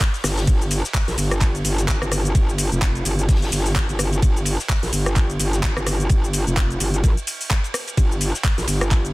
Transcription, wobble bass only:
0.24 0.46 G1 loud
0.47 0.82 G1 loud
1.08 1.16 A#1 loud
1.18 1.63 G1 loud
1.64 1.99 G1 loud
2.02 2.33 G1 loud
2.35 2.70 G1 loud
2.72 3.04 F1 loud
3.05 3.27 G1 loud
3.29 3.51 G1 loud
3.52 3.87 G1 loud
3.89 4.21 G1 loud
4.22 4.57 G1 loud
4.83 4.91 A#1 loud
4.93 5.38 G1 loud
5.40 5.74 G1 loud
5.77 6.08 G1 loud
6.10 6.45 G1 loud
6.47 6.79 F1 loud
6.80 7.02 G1 loud
7.04 7.15 A#1 loud
7.97 8.32 G1 loud
8.58 8.66 A#1 loud
8.68 9.13 G1 loud

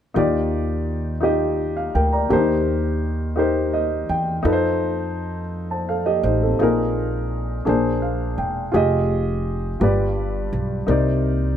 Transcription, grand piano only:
0.14 1.19 D#3 medium
0.14 1.10 D#4 medium
0.14 1.11 F4 medium
0.14 1.11 G4 medium
0.14 1.12 D5 medium
1.21 2.17 D#4 medium
1.21 2.17 F4 medium
1.21 2.18 G4 medium
1.21 1.59 D#5 medium
1.77 1.93 F5 medium
1.95 2.12 A#4 medium
1.95 2.11 G5 medium
2.13 2.47 D5 soft
2.13 2.46 A#5 soft
2.29 3.34 D#3 medium
2.29 2.36 D4 medium
2.29 3.25 G4 medium
2.29 3.26 A#4 medium
2.29 3.27 C5 medium
2.36 3.28 D#4 medium
3.36 4.32 D#4 medium
3.36 4.32 G4 medium
3.36 4.33 A#4 medium
3.36 4.34 C5 medium
3.74 4.07 D#5 medium
4.10 4.42 G5 medium
4.43 5.39 D#4 medium
4.43 5.40 F4 medium
4.43 5.40 A4 medium
4.43 4.52 B4 medium
4.53 5.44 C5 medium
5.71 5.88 C5 soft
5.71 5.87 A5 soft
5.89 6.06 A4 soft
5.89 6.05 F5 medium
6.06 6.23 G4 soft
6.06 6.23 D#5 medium
6.24 6.41 D#4 soft
6.24 6.41 C5 medium
6.43 6.76 C4 soft
6.43 6.76 A4 medium
6.59 7.63 A#2 medium
6.59 7.54 D#4 medium
6.59 7.55 F4 medium
6.59 7.56 G#4 medium
6.59 7.56 A#4 medium
7.65 8.70 A#2 medium
7.65 8.61 D4 medium
7.65 8.62 G#4 medium
7.65 8.62 A#4 medium
7.65 8.63 C5 medium
8.02 8.35 F5 medium
8.38 8.71 G5 medium
8.72 9.68 F4 medium
8.72 9.69 G4 medium
8.72 9.69 G#4 medium
8.76 9.70 D#5 medium
9.80 10.85 G2 medium
9.80 10.76 F4 medium
9.80 10.77 G4 medium
9.80 10.77 B4 medium
9.80 10.78 D5 medium
10.87 11.57 C3 medium
10.87 11.57 D#4 medium
10.87 11.57 A#4 medium
10.87 11.57 C5 medium
10.87 11.57 D5 medium

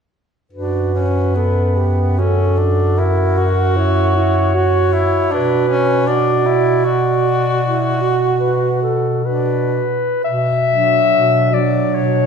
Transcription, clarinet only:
0.52 2.13 B4 soft
2.18 3.00 A4 soft
2.98 3.78 A#4 soft
3.76 5.32 C#5 soft
5.34 6.09 B4 soft
6.08 6.84 D5 soft
6.85 8.10 D5 soft
8.40 8.78 B4 soft
8.82 9.27 A4 soft
9.26 10.24 B4 soft
10.24 11.55 E5 medium
11.53 11.97 D5 soft
11.95 12.26 C#5 soft

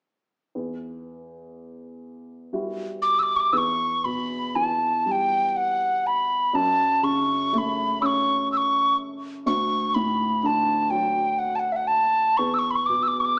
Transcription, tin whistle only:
3.02 3.20 D6 medium
3.19 3.37 D6 medium
3.19 3.24 E6 medium
3.36 3.41 C#6 medium
3.36 3.54 D6 medium
3.53 3.58 E6 medium
3.57 4.06 C#6 medium
4.05 4.57 B5 medium
4.56 5.07 A5 medium
5.07 5.13 A5 medium
5.12 5.49 G5 medium
5.49 5.58 G5 soft
5.56 6.08 F#5 medium
6.07 6.57 B5 medium
6.55 7.05 A5 medium
7.04 7.54 C#6 medium
7.54 7.59 C#6 medium
7.58 8.04 B5 medium
8.02 8.50 C#6 medium
8.02 8.07 E6 medium
8.52 8.58 E6 medium
8.57 8.96 C#6 medium
9.47 9.96 C#6 medium
9.95 10.42 B5 medium
10.42 10.92 A5 medium
10.42 10.47 B5 medium
10.90 11.40 G5 medium
11.39 11.56 F#5 medium
11.55 11.73 F#5 medium
11.55 11.60 A5 medium
11.72 11.77 E5 medium
11.72 11.89 F#5 medium
11.87 12.39 A5 medium
12.37 12.55 C#6 medium
12.54 12.60 E6 medium
12.59 12.72 C#6 medium
12.71 12.76 B5 medium
12.75 12.87 C#6 medium
12.86 13.04 D6 medium
13.03 13.09 E6 medium
13.08 13.21 D6 medium
13.20 13.26 C#6 medium
13.25 13.39 D6 medium

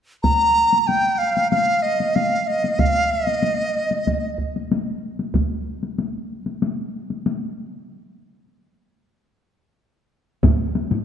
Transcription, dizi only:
0.23 0.81 A#5 medium
0.81 0.89 A#5 soft
0.87 1.20 G5 medium
1.18 1.50 F5 medium
1.51 1.84 F5 medium
1.82 2.17 D#5 medium
2.15 2.49 F5 medium
2.47 2.81 D#5 medium
2.80 3.13 F5 medium
3.12 4.39 D#5 medium

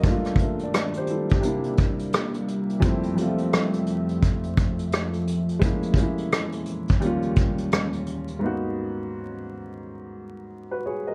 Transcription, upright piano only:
0.00 0.32 G2 medium
0.00 0.33 A3 medium
0.00 0.25 A#4 medium
0.00 0.24 D#5 medium
0.06 0.34 A#3 medium
0.06 0.35 D4 medium
0.06 0.36 F4 loud
0.41 0.60 A#4 soft
0.41 0.60 E5 soft
0.63 0.95 A4 medium
0.63 0.95 D5 medium
0.97 1.09 G4 medium
0.97 1.09 C5 medium
1.10 1.30 E4 medium
1.10 1.29 A4 medium
1.31 1.44 D4 medium
1.31 1.63 G4 medium
1.40 2.56 C3 medium
1.40 2.57 G3 medium
1.40 2.58 A#3 medium
1.45 2.59 D4 medium
1.45 2.60 E4 medium
2.80 3.11 F2 medium
2.80 3.12 G3 medium
2.80 3.12 A3 medium
2.84 3.13 C4 medium
2.84 3.14 E4 loud
3.15 4.31 F2 medium
3.15 4.32 G3 medium
3.15 4.33 A3 medium
3.20 4.33 C4 medium
3.20 4.34 F4 medium
5.59 5.90 G#3 medium
5.59 5.91 A#3 medium
5.64 5.92 C#4 medium
5.64 5.93 E4 medium
5.96 7.01 G#3 medium
5.96 7.01 A#3 medium
6.00 7.03 C#4 medium
6.00 7.04 E4 medium
7.00 8.15 D#2 medium
7.00 8.16 G3 medium
7.00 8.17 A#3 medium
7.04 8.17 C#4 medium
7.04 8.18 F4 loud
8.39 9.55 G#2 medium
8.39 9.55 A#3 medium
8.39 9.56 B3 medium
8.44 9.57 D#4 medium
8.44 9.58 F#4 medium
10.71 10.85 F#4 soft
10.71 10.85 B4 medium
10.86 11.05 G#4 medium
10.86 11.05 C#5 medium
11.07 11.15 A#4 medium
11.07 11.15 D#5 medium

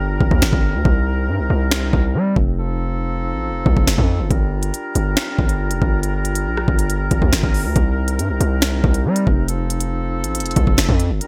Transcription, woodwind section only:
0.00 0.82 G3 medium
0.00 0.82 D4 medium
0.00 0.82 F4 medium
0.00 2.41 A#4 medium
0.85 2.41 C3 medium
0.85 4.27 C4 medium
0.85 2.41 D#4 medium
2.58 4.29 F3 medium
2.58 4.29 D#4 medium
2.58 4.29 A4 medium
4.30 7.72 G3 medium
4.30 7.72 D4 medium
4.30 7.72 F4 medium
4.30 9.45 A#4 medium
7.76 9.47 C3 medium
7.76 11.04 C4 medium
7.76 11.04 D#4 medium
9.48 11.04 F3 medium
9.48 11.04 A4 medium
11.21 11.27 G3 medium
11.21 11.27 D4 medium
11.21 11.27 F4 medium
11.21 11.27 A#4 medium

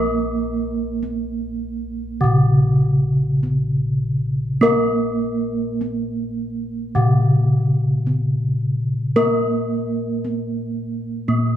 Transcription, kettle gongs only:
0.00 2.19 A#1 loud
0.00 3.37 A#4 medium
1.03 1.11 B3 soft
2.24 5.76 A#2 medium
3.43 3.51 B3 soft
4.63 8.03 A#4 medium
5.81 5.89 B3 soft
6.96 10.19 A#2 medium
8.07 8.15 B3 soft
9.16 11.57 A#4 medium
10.25 10.33 B3 soft
11.28 11.57 A#2 medium

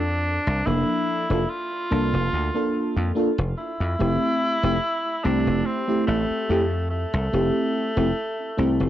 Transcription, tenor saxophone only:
0.00 0.68 D4 loud
0.67 1.51 E4 loud
1.49 3.16 F4 loud
3.58 5.25 E4 loud
5.24 5.67 D4 loud
5.66 6.06 C4 loud
6.07 6.87 A3 loud
6.90 8.89 A3 loud

